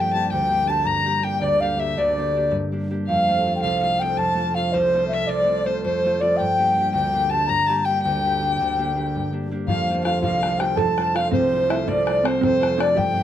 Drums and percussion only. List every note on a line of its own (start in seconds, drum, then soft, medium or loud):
9.68 bodhran medium
10.05 bodhran medium
10.23 bodhran medium
10.43 bodhran soft
10.60 bodhran medium
10.77 bodhran medium
10.98 bodhran medium
11.16 bodhran medium
11.32 bodhran medium
11.70 bodhran medium
11.88 bodhran medium
12.07 bodhran medium
12.25 bodhran medium
12.43 bodhran medium
12.63 bodhran medium
12.80 bodhran medium
12.98 bodhran medium